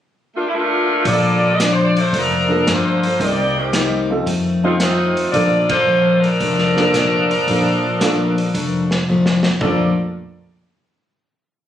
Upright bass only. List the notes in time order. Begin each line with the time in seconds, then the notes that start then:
1.05 A#1
2.13 F1
2.66 G2
3.19 C2
4.27 F2
5.17 muted upright bass stroke
5.33 A#1
6.41 F1
7.48 A#1
8.54 F1
9.61 A#1